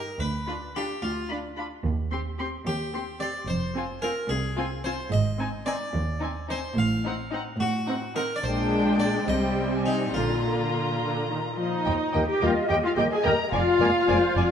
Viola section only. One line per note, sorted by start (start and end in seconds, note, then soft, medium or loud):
0.48 0.56 D4 soft
0.76 0.84 D4 soft
1.30 1.38 D4 soft
1.56 1.64 D4 soft
2.11 2.19 C4 soft
2.40 2.48 C4 soft
2.93 3.01 C4 soft
3.20 3.28 C4 soft
3.74 3.82 C4 soft
4.03 4.11 C4 soft
4.58 4.66 C4 soft
4.84 4.92 C4 soft
5.39 5.47 C4 soft
5.66 5.74 C4 soft
6.22 6.30 C4 soft
6.50 6.58 C4 soft
7.06 7.14 C4 medium
7.33 7.41 C4 soft
7.88 7.96 C4 soft
8.17 8.25 C4 soft
8.45 9.24 G#3 medium
9.29 10.14 G3 medium
10.15 10.94 D3 soft
11.01 11.28 D3 soft
11.29 11.37 D#3 soft
11.58 11.86 F3 soft
11.58 12.24 D#4 medium
12.28 12.42 G4 medium
12.42 12.70 F4 medium
12.69 12.74 G4 medium
12.84 12.90 F4 medium
12.97 13.02 G4 medium
13.12 13.17 G#4 medium
13.26 13.34 A#4 medium
13.52 14.51 F4 medium